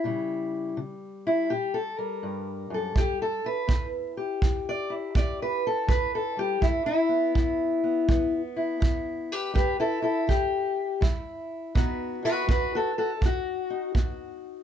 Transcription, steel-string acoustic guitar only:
0.00 0.72 A#2 medium
0.00 0.77 E4 loud
0.05 0.76 C#3 soft
0.05 1.98 G3 medium
0.77 1.45 C#3 medium
1.27 1.50 E4 medium
1.50 2.18 A#2 medium
1.50 1.74 G4 loud
1.74 1.98 A4 medium
1.98 3.44 G3 soft
1.98 2.71 A#4 loud
2.23 2.70 G2 medium
2.70 2.95 F#2 medium
2.70 2.97 A4 medium
2.95 3.64 E2 medium
2.95 3.21 G4 loud
3.22 3.46 A4 medium
3.44 4.90 E4 soft
3.44 3.86 B4 loud
3.67 4.37 B3 medium
4.17 5.66 G4 medium
4.42 5.10 E2 medium
4.69 4.92 D5 loud
4.90 6.62 E4 soft
5.15 5.83 B3 medium
5.15 5.40 D5 loud
5.42 5.65 B4 medium
5.67 5.90 A4 medium
5.87 6.56 E2 medium
5.87 6.13 B4 medium
6.15 6.38 A4 medium
6.37 6.60 G3 soft
6.37 6.63 G4 medium
6.61 7.30 G3 medium
6.61 6.85 E4 medium
6.86 8.33 E4 loud
7.09 7.83 B3 soft
7.34 8.03 E2 medium
7.84 8.08 B3 soft
8.08 8.76 G3 medium
8.08 9.32 B3 soft
8.56 9.33 E4 medium
8.80 9.49 C3 medium
9.32 9.54 G4 medium
9.32 9.54 B4 loud
9.54 10.23 G3 medium
9.54 9.79 G4 medium
9.54 9.79 B4 medium
9.80 10.01 E4 medium
9.80 10.03 A4 medium
10.02 10.27 E4 medium
10.02 10.28 A4 medium
10.27 10.96 C3 medium
10.27 11.02 G4 loud
11.01 11.70 G3 medium
11.01 11.75 E4 soft
11.75 12.43 B2 medium
11.75 12.46 B3 medium
11.75 12.21 D#4 medium
11.75 12.24 F#4 medium
11.75 12.24 B4 medium
12.23 13.69 D#4 soft
12.23 12.48 F#4 medium
12.23 12.49 B4 medium
12.47 13.16 B3 medium
12.47 12.73 F#4 medium
12.47 12.74 B4 loud
12.75 12.90 F#4 medium
12.75 12.97 A4 loud
12.98 13.10 F#4 medium
12.98 13.22 A4 medium
13.21 13.90 F#3 medium
13.26 13.94 F#4 loud
13.70 14.63 D#4 medium
13.95 14.63 B3 medium
13.95 14.63 F#4 soft

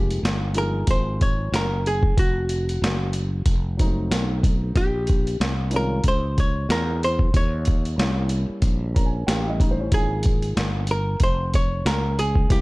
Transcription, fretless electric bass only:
0.00 0.21 F1 loud
0.23 0.85 G1 medium
0.87 1.49 G#1 medium
1.52 2.14 F#1 medium
2.17 2.79 F1 loud
2.82 3.43 F#1 loud
3.46 4.08 F1 medium
4.11 4.72 B1 medium
4.75 5.37 A#1 loud
5.40 6.02 C2 medium
6.04 6.66 C#2 medium
6.69 7.30 E2 medium
7.34 7.95 D#2 loud
7.98 8.46 C2 loud
8.50 muted fretless electric bass stroke soft
8.62 9.24 A#1 loud
9.28 9.89 A1 medium
9.92 10.53 G#1 loud
10.57 11.18 G1 loud
11.20 11.82 F1 medium
11.85 12.47 C#2 medium
12.50 12.61 C2 medium

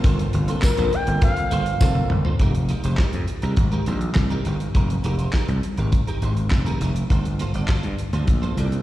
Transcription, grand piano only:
0.00 0.19 A#3 medium
0.00 0.20 C4 medium
0.00 0.20 F4 medium
0.00 0.20 A4 medium
0.48 0.84 A#3 medium
0.48 0.84 C4 medium
0.48 0.84 F4 medium
0.48 0.84 A4 medium
1.07 1.52 A#3 medium
1.07 1.52 C4 medium
1.07 1.52 F4 medium
1.07 1.52 A4 medium
1.80 2.17 A#3 medium
1.80 2.17 C4 medium
1.80 2.17 F4 medium
1.80 2.17 A4 loud

